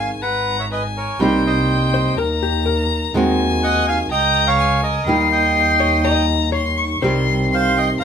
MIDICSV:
0, 0, Header, 1, 6, 480
1, 0, Start_track
1, 0, Key_signature, -4, "major"
1, 0, Tempo, 486618
1, 1193, Time_signature, 4, 2, 24, 8
1, 7931, End_track
2, 0, Start_track
2, 0, Title_t, "Violin"
2, 0, Program_c, 0, 40
2, 0, Note_on_c, 0, 80, 76
2, 216, Note_on_c, 0, 82, 77
2, 231, Note_off_c, 0, 80, 0
2, 705, Note_off_c, 0, 82, 0
2, 711, Note_on_c, 0, 80, 75
2, 1189, Note_on_c, 0, 79, 82
2, 1203, Note_off_c, 0, 80, 0
2, 2141, Note_on_c, 0, 82, 89
2, 2156, Note_off_c, 0, 79, 0
2, 3105, Note_on_c, 0, 80, 100
2, 3120, Note_off_c, 0, 82, 0
2, 4045, Note_off_c, 0, 80, 0
2, 4051, Note_on_c, 0, 82, 98
2, 4494, Note_off_c, 0, 82, 0
2, 4519, Note_on_c, 0, 80, 82
2, 4966, Note_off_c, 0, 80, 0
2, 4991, Note_on_c, 0, 84, 100
2, 5960, Note_on_c, 0, 82, 88
2, 5974, Note_off_c, 0, 84, 0
2, 6438, Note_off_c, 0, 82, 0
2, 6444, Note_on_c, 0, 84, 84
2, 6688, Note_on_c, 0, 85, 85
2, 6702, Note_off_c, 0, 84, 0
2, 6924, Note_off_c, 0, 85, 0
2, 6930, Note_on_c, 0, 84, 95
2, 7385, Note_off_c, 0, 84, 0
2, 7405, Note_on_c, 0, 84, 96
2, 7864, Note_off_c, 0, 84, 0
2, 7888, Note_on_c, 0, 82, 90
2, 7931, Note_off_c, 0, 82, 0
2, 7931, End_track
3, 0, Start_track
3, 0, Title_t, "Bandoneon"
3, 0, Program_c, 1, 23
3, 0, Note_on_c, 1, 77, 62
3, 0, Note_on_c, 1, 80, 86
3, 100, Note_off_c, 1, 77, 0
3, 104, Note_off_c, 1, 80, 0
3, 218, Note_on_c, 1, 71, 67
3, 222, Note_on_c, 1, 78, 82
3, 560, Note_off_c, 1, 71, 0
3, 583, Note_on_c, 1, 73, 58
3, 598, Note_off_c, 1, 78, 0
3, 598, Note_on_c, 1, 76, 68
3, 639, Note_off_c, 1, 73, 0
3, 650, Note_off_c, 1, 76, 0
3, 702, Note_on_c, 1, 71, 61
3, 712, Note_on_c, 1, 75, 78
3, 813, Note_off_c, 1, 71, 0
3, 820, Note_off_c, 1, 75, 0
3, 959, Note_on_c, 1, 70, 58
3, 960, Note_on_c, 1, 73, 74
3, 1180, Note_off_c, 1, 70, 0
3, 1180, Note_off_c, 1, 73, 0
3, 1192, Note_on_c, 1, 67, 62
3, 1209, Note_on_c, 1, 72, 80
3, 1415, Note_off_c, 1, 67, 0
3, 1422, Note_off_c, 1, 72, 0
3, 1436, Note_on_c, 1, 72, 57
3, 1449, Note_on_c, 1, 75, 72
3, 2109, Note_off_c, 1, 72, 0
3, 2116, Note_off_c, 1, 75, 0
3, 3582, Note_on_c, 1, 78, 99
3, 3592, Note_on_c, 1, 75, 73
3, 3800, Note_off_c, 1, 78, 0
3, 3805, Note_off_c, 1, 75, 0
3, 3822, Note_on_c, 1, 80, 95
3, 3832, Note_on_c, 1, 77, 75
3, 3927, Note_off_c, 1, 80, 0
3, 3935, Note_off_c, 1, 77, 0
3, 4055, Note_on_c, 1, 79, 95
3, 4061, Note_on_c, 1, 75, 73
3, 4389, Note_off_c, 1, 75, 0
3, 4410, Note_on_c, 1, 77, 91
3, 4420, Note_on_c, 1, 73, 70
3, 4421, Note_off_c, 1, 79, 0
3, 4741, Note_off_c, 1, 77, 0
3, 4746, Note_off_c, 1, 73, 0
3, 4765, Note_on_c, 1, 70, 64
3, 4770, Note_on_c, 1, 75, 83
3, 5210, Note_off_c, 1, 70, 0
3, 5212, Note_off_c, 1, 75, 0
3, 5248, Note_on_c, 1, 79, 84
3, 5253, Note_on_c, 1, 75, 68
3, 6169, Note_off_c, 1, 79, 0
3, 6172, Note_off_c, 1, 75, 0
3, 7440, Note_on_c, 1, 77, 96
3, 7441, Note_on_c, 1, 72, 74
3, 7657, Note_off_c, 1, 72, 0
3, 7661, Note_on_c, 1, 79, 87
3, 7679, Note_on_c, 1, 75, 65
3, 7680, Note_off_c, 1, 77, 0
3, 7771, Note_off_c, 1, 79, 0
3, 7785, Note_off_c, 1, 75, 0
3, 7888, Note_on_c, 1, 77, 90
3, 7931, Note_off_c, 1, 77, 0
3, 7931, End_track
4, 0, Start_track
4, 0, Title_t, "Hollow-body jazz guitar"
4, 0, Program_c, 2, 26
4, 1913, Note_on_c, 2, 72, 93
4, 2148, Note_off_c, 2, 72, 0
4, 2152, Note_on_c, 2, 70, 88
4, 2394, Note_off_c, 2, 70, 0
4, 2394, Note_on_c, 2, 67, 81
4, 2621, Note_on_c, 2, 70, 73
4, 2635, Note_off_c, 2, 67, 0
4, 3417, Note_off_c, 2, 70, 0
4, 5723, Note_on_c, 2, 73, 75
4, 5961, Note_off_c, 2, 73, 0
4, 5965, Note_on_c, 2, 75, 92
4, 6414, Note_off_c, 2, 75, 0
4, 6434, Note_on_c, 2, 73, 73
4, 6925, Note_off_c, 2, 73, 0
4, 6929, Note_on_c, 2, 72, 67
4, 7271, Note_off_c, 2, 72, 0
4, 7931, End_track
5, 0, Start_track
5, 0, Title_t, "Nylon-string guitar"
5, 0, Program_c, 3, 24
5, 0, Note_on_c, 3, 51, 70
5, 0, Note_on_c, 3, 56, 75
5, 0, Note_on_c, 3, 60, 78
5, 0, Note_on_c, 3, 68, 80
5, 212, Note_off_c, 3, 51, 0
5, 218, Note_off_c, 3, 56, 0
5, 224, Note_off_c, 3, 60, 0
5, 226, Note_off_c, 3, 68, 0
5, 1178, Note_on_c, 3, 48, 72
5, 1184, Note_on_c, 3, 55, 84
5, 1191, Note_on_c, 3, 58, 77
5, 1201, Note_on_c, 3, 63, 82
5, 1208, Note_on_c, 3, 67, 78
5, 2130, Note_off_c, 3, 48, 0
5, 2133, Note_off_c, 3, 55, 0
5, 2136, Note_off_c, 3, 58, 0
5, 2145, Note_off_c, 3, 67, 0
5, 2638, Note_off_c, 3, 63, 0
5, 3099, Note_on_c, 3, 51, 83
5, 3109, Note_on_c, 3, 56, 89
5, 3115, Note_on_c, 3, 60, 94
5, 3128, Note_on_c, 3, 66, 96
5, 4041, Note_off_c, 3, 51, 0
5, 4046, Note_off_c, 3, 56, 0
5, 4049, Note_off_c, 3, 60, 0
5, 4056, Note_off_c, 3, 66, 0
5, 4995, Note_on_c, 3, 51, 81
5, 5002, Note_on_c, 3, 55, 77
5, 5010, Note_on_c, 3, 58, 81
5, 5019, Note_on_c, 3, 63, 85
5, 5020, Note_on_c, 3, 67, 82
5, 6916, Note_off_c, 3, 51, 0
5, 6920, Note_on_c, 3, 48, 78
5, 6923, Note_off_c, 3, 55, 0
5, 6928, Note_on_c, 3, 51, 76
5, 6929, Note_off_c, 3, 58, 0
5, 6933, Note_off_c, 3, 63, 0
5, 6934, Note_off_c, 3, 67, 0
5, 6935, Note_on_c, 3, 55, 80
5, 6944, Note_on_c, 3, 60, 86
5, 6950, Note_on_c, 3, 67, 86
5, 7888, Note_off_c, 3, 48, 0
5, 7893, Note_off_c, 3, 51, 0
5, 7896, Note_off_c, 3, 55, 0
5, 7901, Note_off_c, 3, 60, 0
5, 7903, Note_off_c, 3, 67, 0
5, 7931, End_track
6, 0, Start_track
6, 0, Title_t, "Double bass"
6, 0, Program_c, 4, 43
6, 0, Note_on_c, 4, 32, 65
6, 177, Note_off_c, 4, 32, 0
6, 217, Note_on_c, 4, 32, 69
6, 1139, Note_off_c, 4, 32, 0
6, 1189, Note_on_c, 4, 36, 73
6, 2097, Note_off_c, 4, 36, 0
6, 2140, Note_on_c, 4, 39, 76
6, 3050, Note_off_c, 4, 39, 0
6, 3100, Note_on_c, 4, 39, 74
6, 4003, Note_off_c, 4, 39, 0
6, 4046, Note_on_c, 4, 37, 79
6, 4953, Note_off_c, 4, 37, 0
6, 4998, Note_on_c, 4, 39, 78
6, 6835, Note_off_c, 4, 39, 0
6, 6926, Note_on_c, 4, 36, 69
6, 7853, Note_off_c, 4, 36, 0
6, 7931, End_track
0, 0, End_of_file